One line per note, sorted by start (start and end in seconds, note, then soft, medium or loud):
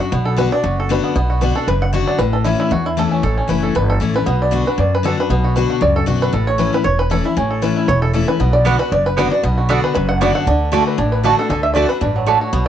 0.00 0.10 F#2 loud
0.00 0.12 D4 soft
0.00 0.11 F#4 medium
0.00 0.12 F#4 medium
0.12 0.46 B1 medium
0.12 0.62 B2 medium
0.12 0.49 B3 medium
0.25 0.37 A4 medium
0.36 0.51 D3 medium
0.36 0.51 B3 medium
0.36 0.52 D4 loud
0.36 0.50 F#4 loud
0.36 0.53 B4 medium
0.51 0.64 D4 soft
0.51 0.63 F#4 medium
0.51 0.76 D5 loud
0.64 0.98 F#1 medium
0.64 1.13 F#2 medium
0.64 1.01 F#4 medium
0.80 0.90 A4 medium
0.89 1.14 D3 medium
0.89 1.15 B3 medium
0.89 1.15 D4 loud
0.89 1.15 F#4 medium
0.89 1.15 B4 medium
1.04 1.14 B3 medium
1.16 1.50 B1 medium
1.16 1.65 B2 medium
1.16 1.53 B3 medium
1.30 1.65 F#4 medium
1.41 1.55 D3 medium
1.41 1.55 B3 medium
1.41 1.56 D4 loud
1.41 1.54 F#4 loud
1.41 1.67 B4 medium
1.55 1.68 D4 medium
1.55 1.67 F#4 medium
1.55 1.68 A4 medium
1.67 2.02 F#1 medium
1.67 2.17 F#2 medium
1.67 1.81 B4 loud
1.82 1.93 F#5 loud
1.93 2.18 D3 medium
1.93 2.18 B3 medium
1.93 2.19 D4 loud
1.93 2.19 F#4 medium
1.93 2.19 F#4 loud
2.07 2.20 D5 medium
2.18 2.53 A1 medium
2.18 2.69 A2 medium
2.18 2.33 B4 loud
2.33 2.44 A4 medium
2.44 2.70 E3 medium
2.44 2.70 A3 loud
2.44 2.70 C#4 medium
2.44 2.58 E4 medium
2.44 2.71 E4 loud
2.60 2.72 E4 medium
2.71 3.20 E2 medium
2.71 3.05 E2 loud
2.71 2.85 F#4 medium
2.86 2.98 E4 medium
2.97 3.22 E3 medium
2.97 3.22 A3 loud
2.97 3.22 C#4 medium
2.97 3.23 E4 medium
2.97 3.11 A4 medium
3.11 3.36 C#4 medium
3.23 3.40 A1 medium
3.23 3.60 A4 medium
3.37 3.73 C#4 medium
3.48 3.71 F#1 medium
3.48 3.73 E3 medium
3.48 3.73 A3 medium
3.48 3.74 C#4 medium
3.48 3.74 E4 medium
3.48 3.75 B4 medium
3.63 3.88 A4 medium
3.75 3.97 G1 medium
3.75 4.24 E2 medium
3.75 3.88 B4 medium
3.90 4.00 A4 medium
4.00 4.23 A1 medium
4.00 4.14 E3 medium
4.00 4.14 A3 medium
4.00 4.15 C#4 medium
4.00 4.13 E4 medium
4.00 4.27 A4 medium
4.14 4.27 C#4 soft
4.14 4.26 E4 medium
4.14 4.42 B4 medium
4.26 4.61 B1 medium
4.26 4.76 B2 medium
4.26 4.63 B3 medium
4.42 4.68 D5 medium
4.51 4.65 D3 medium
4.51 4.66 B3 medium
4.51 4.66 D4 medium
4.51 4.89 F#4 medium
4.51 4.64 F#4 loud
4.66 4.78 D4 soft
4.66 4.77 F#4 medium
4.66 4.79 B4 medium
4.78 5.27 F#2 medium
4.78 5.12 F#2 medium
4.78 4.93 D5 medium
4.95 5.06 B4 medium
5.03 5.17 D3 medium
5.03 5.18 B3 medium
5.03 5.18 D4 loud
5.03 5.16 F#4 loud
5.03 5.18 A4 medium
5.17 5.30 D4 soft
5.17 5.29 F#4 medium
5.17 5.30 B4 medium
5.30 5.64 B1 medium
5.30 5.79 B2 medium
5.30 5.67 B3 medium
5.44 5.69 F#4 medium
5.56 5.80 D3 medium
5.56 5.81 B3 medium
5.56 5.81 D4 medium
5.56 5.81 F#4 loud
5.56 5.93 B4 medium
5.70 6.05 F#4 medium
5.81 6.04 C#2 medium
5.81 6.31 F#2 medium
5.81 5.96 D5 loud
5.96 6.07 A4 loud
6.06 6.29 B1 medium
6.06 6.31 D3 medium
6.06 6.32 B3 medium
6.06 6.32 D4 loud
6.06 6.33 F#4 medium
6.06 6.32 F#4 loud
6.22 6.46 B4 loud
6.33 6.67 A1 medium
6.33 6.82 A2 medium
6.33 6.70 A4 medium
6.47 6.71 C#5 medium
6.58 6.72 E3 medium
6.58 6.73 A3 medium
6.58 6.73 C#4 loud
6.58 6.71 E4 medium
6.58 6.73 B4 medium
6.73 6.85 C#4 soft
6.73 6.84 E4 medium
6.73 6.86 B4 loud
6.84 7.19 E1 medium
6.84 7.34 E2 medium
6.84 6.98 C#5 loud
6.99 7.11 B4 medium
7.10 7.24 E3 medium
7.10 7.24 A3 medium
7.10 7.24 C#4 loud
7.10 7.23 E4 medium
7.10 7.25 A4 medium
7.24 7.37 C#4 soft
7.24 7.36 E4 medium
7.37 7.71 A1 loud
7.37 7.86 A2 medium
7.37 7.74 C#4 medium
7.51 7.86 A4 medium
7.62 7.87 E3 medium
7.62 7.87 A3 loud
7.62 7.88 C#4 loud
7.62 7.88 E4 loud
7.62 8.00 B4 medium
7.77 8.12 E4 medium
7.88 8.22 E1 medium
7.88 8.38 E2 medium
7.88 8.01 C#5 loud
8.02 8.13 A4 medium
8.14 8.27 E3 medium
8.14 8.28 A3 medium
8.14 8.28 C#4 medium
8.14 8.27 E4 loud
8.14 8.40 A4 medium
8.28 8.41 C#4 soft
8.28 8.40 E4 medium
8.28 8.55 B4 loud
8.40 8.74 B1 medium
8.40 8.89 B2 medium
8.40 8.77 B3 medium
8.53 8.80 D5 medium
8.65 8.79 D3 medium
8.65 8.75 B3 loud
8.65 8.79 B3 medium
8.65 8.80 D4 loud
8.65 8.75 F#4 medium
8.65 8.78 F#4 loud
8.65 8.78 B4 medium
8.65 8.76 D5 loud
8.65 8.76 F#5 loud
8.79 8.92 D4 medium
8.79 8.91 F#4 medium
8.79 8.92 B4 loud
8.92 9.26 F#1 medium
8.92 9.41 F#2 medium
8.92 9.06 D5 medium
9.06 9.17 B4 medium
9.17 9.31 D3 medium
9.17 9.27 B3 medium
9.17 9.31 B3 loud
9.17 9.32 D4 medium
9.17 9.27 F#4 medium
9.17 9.31 F#4 loud
9.17 9.31 B4 medium
9.17 9.27 D5 loud
9.17 9.28 F#5 loud
9.31 9.44 D4 soft
9.31 9.43 F#4 medium
9.31 9.43 D5 medium
9.43 9.78 B1 medium
9.43 9.93 B2 medium
9.43 9.81 B3 medium
9.58 10.72 F#4 medium
9.69 9.94 D3 medium
9.69 9.79 B3 medium
9.69 9.94 B3 medium
9.69 9.94 D4 medium
9.69 9.79 F#4 medium
9.69 9.95 F#4 loud
9.69 9.83 A4 medium
9.69 9.79 D5 medium
9.69 9.80 F#5 loud
9.84 9.93 B4 medium
9.94 10.30 F#1 medium
9.94 10.45 F#2 loud
9.94 10.08 B4 loud
10.09 10.20 F#5 loud
10.21 10.46 D3 loud
10.21 10.31 B3 medium
10.21 10.46 B3 loud
10.21 10.46 D4 loud
10.21 10.31 F#4 loud
10.21 10.46 F#4 loud
10.21 10.31 D5 loud
10.21 10.35 D5 loud
10.21 10.31 F#5 medium
10.35 10.70 F#5 loud
10.47 10.81 D2 medium
10.47 10.71 D3 medium
10.47 10.98 D4 medium
10.72 10.97 D3 medium
10.72 10.82 A3 loud
10.72 10.97 A3 medium
10.72 10.97 D4 loud
10.72 10.82 F#4 loud
10.72 11.26 F#4 medium
10.72 10.98 F#4 loud
10.72 10.83 D5 medium
10.72 10.83 A5 loud
10.87 11.11 B4 medium
10.98 11.32 A1 loud
10.98 11.48 A2 medium
10.98 11.66 D4 medium
11.12 11.48 B4 medium
11.23 11.37 D3 medium
11.23 11.34 A3 medium
11.23 11.38 A3 medium
11.23 11.38 D4 medium
11.23 11.34 F#4 medium
11.23 11.37 F#4 loud
11.23 11.39 F#4 medium
11.23 11.35 D5 medium
11.23 11.35 A5 loud
11.39 11.51 D4 medium
11.39 11.50 F#4 medium
11.39 11.49 A4 medium
11.50 11.84 D2 loud
11.50 11.74 D3 medium
11.50 11.63 A4 loud
11.63 11.73 E5 medium
11.74 11.89 D3 medium
11.74 11.85 A3 medium
11.74 11.89 A3 loud
11.74 11.90 D4 medium
11.74 11.86 F#4 medium
11.74 11.88 F#4 medium
11.74 11.89 D5 medium
11.74 11.86 D5 loud
11.74 11.86 A5 loud
11.89 12.02 D4 soft
11.89 12.01 F#4 medium
11.89 12.24 B4 medium
12.01 12.35 A1 medium
12.01 12.26 G2 medium
12.01 12.52 D4 medium
12.16 12.68 F#3 medium
12.26 12.52 A2 medium
12.26 12.37 A3 medium
12.26 12.41 F#4 medium
12.26 12.37 F#4 medium
12.26 12.38 D5 loud
12.26 12.38 A5 medium
12.41 12.68 F#4 medium
12.53 12.68 B1 medium
12.53 12.68 B2 medium
12.53 12.68 B3 medium